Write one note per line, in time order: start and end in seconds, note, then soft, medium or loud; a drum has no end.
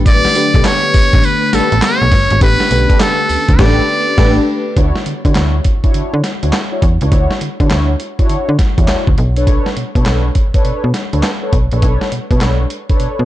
0.00 0.26 A1 loud
0.00 4.73 D3 medium
0.00 0.27 A3 medium
0.00 4.73 A3 medium
0.00 4.73 B3 medium
0.00 0.27 D4 medium
0.00 0.27 G4 medium
0.00 4.73 G4 loud
0.00 0.28 B4 loud
0.06 0.68 D5 loud
0.06 kick loud
0.06 closed hi-hat medium
0.06 tambourine medium
0.25 snare medium
0.35 1.25 A3 medium
0.35 1.26 D4 medium
0.35 1.26 G4 medium
0.35 1.26 B4 medium
0.35 closed hi-hat medium
0.35 tambourine medium
0.54 0.63 B1 medium
0.54 0.68 D4 medium
0.54 0.68 G4 medium
0.54 0.68 A4 medium
0.54 0.68 B4 medium
0.54 kick medium
0.54 closed hi-hat medium
0.64 1.26 C#5 loud
0.64 snare loud
0.64 clap loud
0.64 closed hi-hat medium
0.64 tambourine medium
0.94 1.02 A1 medium
0.94 kick loud
0.94 open hi-hat medium
0.94 tambourine medium
1.13 1.22 A1 medium
1.13 kick loud
1.13 closed hi-hat medium
1.24 1.56 B4 loud
1.24 closed hi-hat medium
1.24 tambourine medium
1.53 1.61 A1 medium
1.53 1.73 D4 medium
1.53 1.74 G4 medium
1.53 1.74 A4 medium
1.53 1.85 A4 medium
1.53 1.74 B4 medium
1.53 snare medium
1.53 closed hi-hat medium
1.53 tambourine medium
1.72 1.81 A1 medium
1.72 closed hi-hat medium
1.82 2.42 C#5 loud
1.82 snare loud
1.82 clap medium
1.82 closed hi-hat medium
1.82 tambourine medium
2.02 2.10 B1 medium
2.12 2.28 G1 medium
2.12 kick loud
2.12 open hi-hat medium
2.31 2.40 G#1 loud
2.31 closed hi-hat medium
2.41 2.57 A1 loud
2.41 2.66 A3 medium
2.41 2.66 D4 medium
2.41 2.66 G4 medium
2.41 2.97 B4 loud
2.41 2.66 B4 medium
2.41 kick loud
2.41 closed hi-hat medium
2.41 tambourine medium
2.60 snare medium
2.71 2.87 B1 medium
2.71 3.58 A3 medium
2.71 2.79 C#4 medium
2.71 3.59 G4 medium
2.71 3.59 B4 medium
2.71 closed hi-hat medium
2.71 tambourine medium
2.78 3.62 D4 medium
2.90 3.03 D4 medium
2.90 3.03 G4 medium
2.90 3.03 A4 medium
2.90 3.03 B4 medium
2.90 kick medium
2.90 closed hi-hat medium
3.00 3.62 A4 medium
3.00 snare loud
3.00 clap medium
3.00 closed hi-hat medium
3.00 tambourine medium
3.29 3.37 D2 soft
3.29 open hi-hat medium
3.29 tambourine medium
3.48 3.57 D2 medium
3.48 kick loud
3.48 closed hi-hat medium
3.59 3.81 A1 loud
3.59 3.80 A3 loud
3.59 3.80 D4 loud
3.59 3.80 G4 loud
3.59 3.81 G4 loud
3.59 3.80 A4 loud
3.59 3.81 B4 loud
3.59 4.48 D5 loud
3.59 kick loud
3.59 snare loud
3.59 crash medium
3.66 3.84 D4 loud
4.17 4.39 A1 loud
4.17 4.39 A3 loud
4.17 4.39 D4 loud
4.17 4.39 G4 loud
4.17 4.40 G4 medium
4.17 4.39 A4 loud
4.17 4.39 B4 loud
4.17 4.40 B4 loud
4.17 kick loud
4.17 snare loud
4.17 crash medium
4.25 4.43 D4 loud
4.76 4.93 D2 medium
4.76 4.97 D4 medium
4.76 4.97 E4 medium
4.76 4.97 F#4 medium
4.76 4.97 C#5 loud
4.76 kick medium
4.76 closed hi-hat medium
4.96 snare medium
5.06 5.14 D3 soft
5.06 closed hi-hat medium
5.25 5.34 D3 medium
5.25 5.34 D4 medium
5.25 5.34 E4 medium
5.25 5.34 F#4 medium
5.25 5.34 C#5 medium
5.25 kick medium
5.25 closed hi-hat soft
5.35 5.60 D2 medium
5.35 5.56 D4 medium
5.35 5.56 E4 medium
5.35 5.56 F#4 medium
5.35 5.56 C#5 medium
5.35 snare loud
5.35 clap medium
5.35 closed hi-hat medium
5.64 kick medium
5.64 closed hi-hat medium
5.83 5.92 D4 medium
5.83 5.93 E4 medium
5.83 5.93 F#4 medium
5.83 5.93 C#5 medium
5.83 kick medium
5.83 closed hi-hat soft
5.94 6.02 D3 soft
5.94 6.15 D4 medium
5.94 6.15 E4 medium
5.94 6.15 F#4 medium
5.94 6.15 C#5 medium
5.94 closed hi-hat medium
6.14 6.22 D3 loud
6.24 snare medium
6.24 closed hi-hat medium
6.42 6.52 D2 medium
6.42 6.56 D4 medium
6.42 6.56 E4 medium
6.42 6.56 F#4 medium
6.42 6.56 C#5 medium
6.42 closed hi-hat medium
6.53 snare loud
6.53 clap medium
6.53 closed hi-hat medium
6.71 6.85 D4 medium
6.71 6.85 E4 medium
6.71 6.85 F#4 medium
6.71 6.85 C#5 medium
6.82 6.98 E2 medium
6.82 kick medium
6.82 closed hi-hat medium
7.01 7.10 C#2 loud
7.01 7.10 D4 medium
7.01 7.10 E4 medium
7.01 7.10 F#4 medium
7.01 7.11 C#5 medium
7.01 closed hi-hat medium
7.11 7.28 D2 loud
7.11 7.32 D4 medium
7.11 7.32 E4 medium
7.11 7.32 F#4 medium
7.11 7.32 C#5 loud
7.11 kick loud
7.11 closed hi-hat medium
7.31 snare medium
7.41 7.49 D3 soft
7.41 closed hi-hat medium
7.60 7.69 D3 medium
7.60 7.69 D4 medium
7.60 7.69 E4 medium
7.60 7.69 F#4 medium
7.60 7.70 C#5 medium
7.60 kick medium
7.60 closed hi-hat soft
7.70 7.96 D2 medium
7.70 7.91 D4 medium
7.70 7.91 E4 medium
7.70 7.91 F#4 medium
7.70 7.91 C#5 medium
7.70 snare loud
7.70 clap medium
7.70 closed hi-hat medium
8.00 closed hi-hat medium
8.18 8.28 D4 medium
8.18 8.28 E4 medium
8.18 8.28 F#4 medium
8.18 8.28 C#5 medium
8.18 kick medium
8.18 closed hi-hat soft
8.29 8.37 D3 soft
8.29 8.50 D4 medium
8.29 8.50 E4 medium
8.29 8.50 F#4 medium
8.29 8.50 C#5 medium
8.29 closed hi-hat medium
8.49 8.57 D3 loud
8.59 kick medium
8.59 snare medium
8.59 closed hi-hat medium
8.77 8.87 E2 medium
8.77 8.87 D4 medium
8.77 8.87 E4 medium
8.77 8.87 F#4 medium
8.77 8.87 C#5 medium
8.77 kick medium
8.77 closed hi-hat medium
8.88 8.96 D2 soft
8.88 9.09 D4 medium
8.88 9.09 E4 medium
8.88 9.09 F#4 medium
8.88 9.09 C#5 medium
8.88 snare loud
8.88 clap medium
8.88 closed hi-hat medium
9.07 9.16 D2 medium
9.07 kick loud
9.18 9.59 B1 loud
9.18 closed hi-hat medium
9.36 9.45 D4 medium
9.36 9.46 A4 medium
9.36 9.46 B4 medium
9.36 9.46 C#5 medium
9.36 closed hi-hat medium
9.47 9.67 D4 medium
9.47 9.68 A4 medium
9.47 9.68 B4 medium
9.47 9.68 C#5 loud
9.47 kick loud
9.47 closed hi-hat medium
9.66 snare medium
9.77 9.84 B2 soft
9.77 closed hi-hat medium
9.95 10.04 B2 medium
9.95 10.04 D4 medium
9.95 10.04 A4 medium
9.95 10.05 B4 medium
9.95 10.05 C#5 medium
9.95 kick medium
9.95 closed hi-hat soft
10.05 10.31 B1 medium
10.05 10.26 D4 medium
10.05 10.26 A4 medium
10.05 10.27 B4 medium
10.05 10.27 C#5 medium
10.05 snare loud
10.05 clap medium
10.05 closed hi-hat medium
10.35 kick medium
10.35 closed hi-hat medium
10.54 10.63 D4 medium
10.54 10.63 A4 medium
10.54 10.64 B4 medium
10.54 10.64 C#5 medium
10.54 kick medium
10.54 closed hi-hat soft
10.64 10.73 B2 soft
10.64 10.85 D4 medium
10.64 10.85 A4 medium
10.64 10.85 B4 medium
10.64 10.86 C#5 medium
10.64 closed hi-hat medium
10.84 10.93 B2 medium
10.94 snare medium
10.94 closed hi-hat medium
11.13 11.22 D2 medium
11.13 11.26 D4 medium
11.13 11.26 A4 medium
11.13 11.27 B4 medium
11.13 11.27 C#5 medium
11.13 closed hi-hat medium
11.23 snare loud
11.23 clap medium
11.23 closed hi-hat medium
11.42 11.56 D4 medium
11.42 11.56 A4 medium
11.42 11.56 B4 medium
11.42 11.56 C#5 medium
11.53 11.69 B1 medium
11.53 kick medium
11.53 closed hi-hat medium
11.72 11.81 A#1 medium
11.72 11.81 D4 medium
11.72 11.81 A4 medium
11.72 11.81 B4 medium
11.72 11.81 C#5 medium
11.72 closed hi-hat medium
11.82 11.98 B1 loud
11.82 12.03 D4 medium
11.82 12.03 A4 medium
11.82 12.03 B4 medium
11.82 12.03 C#5 loud
11.82 kick loud
11.82 closed hi-hat medium
12.01 snare medium
12.12 12.20 B2 soft
12.12 closed hi-hat medium
12.30 12.40 B2 loud
12.30 12.40 D4 medium
12.30 12.40 A4 medium
12.30 12.40 B4 medium
12.30 12.40 C#5 medium
12.30 kick medium
12.30 closed hi-hat soft
12.41 12.66 B1 loud
12.41 12.62 D4 medium
12.41 12.62 A4 medium
12.41 12.62 B4 medium
12.41 12.62 C#5 medium
12.41 snare loud
12.41 clap medium
12.41 closed hi-hat medium
12.70 closed hi-hat medium
12.89 12.98 D4 medium
12.89 12.98 A4 medium
12.89 12.99 B4 medium
12.89 12.99 C#5 medium
12.89 kick medium
12.89 closed hi-hat soft
12.99 13.08 B2 soft
12.99 13.20 D4 medium
12.99 13.20 A4 medium
12.99 13.21 B4 medium
12.99 13.21 C#5 medium
12.99 closed hi-hat medium
13.19 13.25 B2 loud